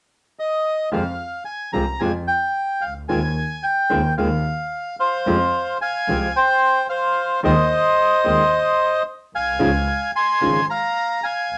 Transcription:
0.39 0.89 D#5 medium
0.92 1.15 F2 medium
0.92 1.01 C3 medium
0.92 1.01 F3 medium
0.92 1.01 G#3 medium
0.92 1.02 C4 medium
0.92 1.02 F4 medium
0.92 1.44 F5 medium
1.45 1.71 G#5 medium
1.73 1.97 C2 medium
1.73 1.83 C3 medium
1.73 1.83 F3 medium
1.73 1.83 G#3 medium
1.73 1.83 C4 medium
1.73 1.83 F4 medium
1.73 2.02 A#5 medium
2.00 2.24 F2 medium
2.00 2.10 C3 medium
2.00 2.10 F3 medium
2.00 2.10 G#3 medium
2.00 2.10 C4 medium
2.00 2.11 F4 medium
2.00 2.12 G#5 medium
2.28 2.84 G5 medium
2.81 3.09 C#2 soft
2.81 2.94 F5 medium
3.09 3.32 D#2 medium
3.09 3.18 D#3 medium
3.09 3.19 G#3 medium
3.09 3.19 C4 medium
3.09 3.19 F4 medium
3.09 3.65 G#5 medium
3.63 4.14 G5 medium
3.90 4.14 D#2 medium
3.90 3.99 D#3 medium
3.90 4.00 G#3 medium
3.90 4.00 C4 medium
3.90 4.00 F4 medium
4.18 4.41 D#2 medium
4.18 4.27 D#3 medium
4.18 4.27 G#3 medium
4.18 4.27 C4 medium
4.18 4.27 F4 medium
4.18 4.96 F5 medium
5.00 5.78 C5 medium
5.00 5.77 F5 medium
5.26 5.50 F2 medium
5.26 5.36 C3 medium
5.26 5.36 F3 medium
5.26 5.36 G#3 medium
5.26 5.36 C4 medium
5.26 5.36 F4 medium
5.81 6.32 F5 medium
5.81 6.37 G#5 medium
6.08 6.31 C2 medium
6.08 6.26 C3 medium
6.08 6.26 F3 medium
6.08 6.26 G#3 medium
6.08 6.26 C4 medium
6.08 6.26 F4 medium
6.36 6.87 C5 medium
6.36 6.86 G5 medium
6.89 7.40 C5 medium
6.89 7.40 F5 medium
7.43 7.66 D#2 medium
7.43 7.53 D#3 medium
7.43 7.53 G#3 medium
7.43 7.53 C4 medium
7.43 7.53 F4 medium
7.43 9.02 C5 medium
7.43 9.03 D#5 medium
8.24 8.48 D#2 medium
8.24 8.42 D#3 medium
8.24 8.42 G#3 medium
8.24 8.42 C4 medium
8.24 8.42 F4 medium
9.34 9.60 B1 soft
9.34 10.11 F5 medium
9.34 10.11 G#5 medium
9.59 9.83 C#2 medium
9.59 9.69 C#3 medium
9.59 9.69 F3 medium
9.59 9.69 G#3 medium
9.59 9.69 D#4 medium
9.59 9.69 F4 medium
10.15 10.65 G#5 medium
10.15 10.66 C6 medium
10.41 10.64 G#1 medium
10.41 10.58 C#3 medium
10.41 10.58 F3 medium
10.41 10.58 G#3 medium
10.41 10.59 D#4 medium
10.41 10.59 F4 medium
10.70 11.20 F5 medium
10.70 11.25 A#5 medium
11.23 11.58 F5 medium
11.23 11.58 G#5 medium
11.50 11.58 A#1 soft

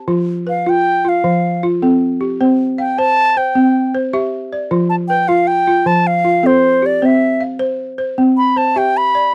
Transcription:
0.00 0.28 A5 medium
0.08 0.47 F3 medium
0.08 0.65 F4 medium
0.47 1.05 B4 medium
0.47 0.71 F5 medium
0.66 1.04 F4 medium
0.66 1.10 G5 loud
1.05 1.62 F4 medium
1.05 1.64 F5 medium
1.24 1.63 F3 medium
1.63 2.21 F4 medium
1.82 2.21 C4 medium
1.82 2.40 A4 medium
2.21 2.59 G4 medium
2.40 2.79 C4 medium
2.40 2.97 C5 medium
2.78 3.36 F5 medium
2.78 3.00 G5 medium
2.98 3.36 C5 medium
2.98 3.39 A5 loud
3.37 3.93 C5 medium
3.37 3.94 G5 medium
3.55 3.94 C4 medium
3.94 4.52 C5 medium
4.13 4.52 G4 medium
4.13 4.71 E5 medium
4.52 4.91 D5 medium
4.71 5.10 F3 medium
4.71 5.28 F4 medium
4.90 4.96 A5 medium
5.08 5.68 B4 medium
5.08 5.30 G5 loud
5.28 5.66 F4 medium
5.28 5.49 F5 medium
5.47 5.88 G5 loud
5.67 6.23 F4 medium
5.86 6.25 F3 medium
5.86 6.08 A5 loud
6.07 6.48 F5 loud
6.25 6.83 F4 medium
6.43 6.83 C4 medium
6.43 7.02 A4 medium
6.43 6.88 C5 medium
6.82 7.21 G4 medium
6.82 7.07 D5 medium
7.02 7.41 C4 medium
7.02 7.58 C5 medium
7.02 7.43 E5 medium
7.41 7.99 F5 medium
7.59 7.97 C5 medium
7.98 8.55 C5 medium
8.18 8.57 C4 medium
8.38 8.59 B5 medium
8.56 9.15 C5 medium
8.56 8.79 A5 medium
8.76 9.15 G4 medium
8.76 9.34 E5 medium
8.76 8.99 G5 medium
8.97 9.34 B5 loud
9.15 9.34 D5 medium

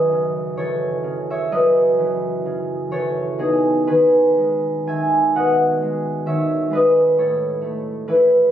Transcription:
0.00 1.51 F#2 medium
0.00 2.64 F#3 soft
0.00 1.52 B4 medium
0.00 0.56 C#5 medium
0.00 1.23 D#5 medium
0.00 2.65 F#5 medium
0.00 1.70 G#5 medium
0.11 1.02 C#3 soft
0.57 1.97 E3 soft
0.57 2.91 A4 soft
0.57 1.30 C#5 medium
1.04 2.44 C#3 soft
1.30 2.91 C#5 medium
1.30 3.44 E5 medium
1.52 3.43 F#2 soft
1.52 3.86 B4 medium
1.52 3.91 D#5 medium
1.99 2.90 E3 soft
2.46 3.43 C#3 soft
2.91 3.43 E3 soft
2.91 3.44 A4 medium
2.91 6.27 C#5 medium
3.38 5.34 B2 soft
3.38 7.20 D#4 medium
3.38 3.87 G#4 medium
3.87 4.86 D#3 soft
3.87 7.20 G#4 medium
3.87 6.72 B4 medium
4.37 5.81 G#3 soft
4.87 6.25 D#3 soft
4.87 6.25 E5 medium
4.87 7.19 G#5 medium
5.35 7.19 B2 medium
5.35 6.71 D#5 medium
5.35 7.19 F#5 medium
5.82 6.70 G#3 soft
6.26 7.19 D#3 soft
6.26 7.17 C#5 medium
6.26 7.03 E5 medium
6.70 7.20 G#3 soft
6.70 8.06 B4 medium
6.75 7.20 D#5 medium
7.18 8.52 A2 medium
7.18 8.52 A4 medium
7.18 8.52 C#5 medium
7.61 8.52 A3 soft
8.08 8.52 E3 soft
8.08 8.52 E4 medium
8.08 8.52 B4 medium

